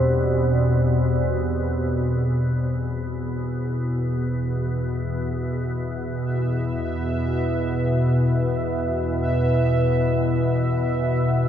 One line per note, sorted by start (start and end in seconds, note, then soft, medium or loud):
0.00 2.63 E2 medium
0.00 2.62 B2 medium
0.00 4.26 G4 medium
0.00 2.63 C5 medium
0.00 5.78 D5 medium
2.61 11.49 E2 medium
2.61 11.49 B2 medium
2.61 11.49 E4 medium
2.61 11.49 E5 medium
3.10 11.49 B4 medium
3.21 11.49 E5 medium